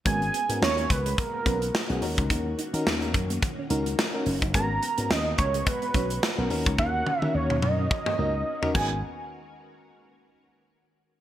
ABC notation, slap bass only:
X:1
M:4/4
L:1/16
Q:"Swing 16ths" 1/4=107
K:G#m
V:1 name="Slap bass" clef=bass
G,,,2 z G,, D,,2 C,,2 z2 B,,,2 z B,,, D,, C,, | D,,2 z D, D,,2 F,,2 z2 C,,2 z2 F,,,2 | G,,,2 z G,, D,,2 C,,2 z2 B,,,2 z B,,, D,, C,, | D,,2 z D, D,,2 F,,2 z2 C,,2 z2 G,,,2 |
z16 |]